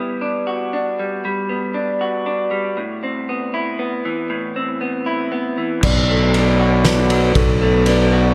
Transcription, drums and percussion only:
5.83 kick medium
5.83 crash medium
6.34 ride soft
6.85 snare medium
6.85 ride soft
7.10 ride soft
7.35 kick medium
7.35 ride soft
7.86 ride soft

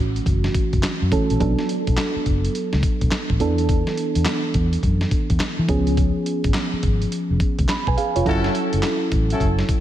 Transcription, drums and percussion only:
0.16 closed hi-hat soft
0.26 kick medium
0.26 closed hi-hat medium
0.44 snare medium
0.55 kick medium
0.55 closed hi-hat medium
0.73 kick medium
0.73 closed hi-hat medium
0.83 snare loud
0.83 clap medium
0.83 closed hi-hat medium
1.12 kick medium
1.12 closed hi-hat medium
1.30 closed hi-hat medium
1.40 kick loud
1.40 closed hi-hat medium
1.59 snare medium
1.69 closed hi-hat medium
1.87 kick medium
1.87 closed hi-hat medium
1.97 snare loud
1.97 clap medium
1.97 closed hi-hat medium
2.26 kick medium
2.26 closed hi-hat medium
2.45 closed hi-hat soft
2.55 closed hi-hat medium
2.73 snare medium
2.83 kick medium
2.83 closed hi-hat medium
3.01 kick medium
3.01 closed hi-hat medium
3.12 snare loud
3.12 clap medium
3.12 closed hi-hat medium
3.30 kick medium
3.40 closed hi-hat medium
3.58 closed hi-hat medium
3.69 kick loud
3.69 closed hi-hat medium
3.87 snare medium
3.97 closed hi-hat medium
4.15 closed hi-hat medium
4.25 snare loud
4.25 clap medium
4.25 closed hi-hat medium
4.54 kick medium
4.54 closed hi-hat medium
4.73 closed hi-hat soft
4.83 kick medium
4.83 closed hi-hat medium
5.01 snare medium
5.11 kick medium
5.11 closed hi-hat medium
5.30 kick medium
5.30 closed hi-hat medium
5.40 snare loud
5.40 clap medium
5.40 closed hi-hat medium
5.69 kick medium
5.69 closed hi-hat medium
5.87 closed hi-hat medium
5.97 kick loud
5.97 closed hi-hat medium
6.26 closed hi-hat medium
6.44 kick medium
6.44 closed hi-hat medium
6.54 snare loud
6.54 clap loud
6.54 closed hi-hat medium
6.83 kick medium
6.83 closed hi-hat medium
7.02 closed hi-hat soft
7.12 closed hi-hat medium
7.40 kick medium
7.40 closed hi-hat medium
7.59 kick medium
7.59 closed hi-hat medium
7.69 snare loud
7.69 clap medium
7.69 closed hi-hat medium
7.87 kick medium
7.98 closed hi-hat medium
8.16 closed hi-hat medium
8.26 kick loud
8.26 closed hi-hat medium
8.44 snare medium
8.55 closed hi-hat medium
8.73 closed hi-hat medium
8.83 snare loud
8.83 clap medium
8.83 closed hi-hat medium
9.12 kick medium
9.12 closed hi-hat medium
9.30 closed hi-hat medium
9.40 kick medium
9.40 closed hi-hat medium
9.59 snare medium
9.69 kick medium
9.69 closed hi-hat medium

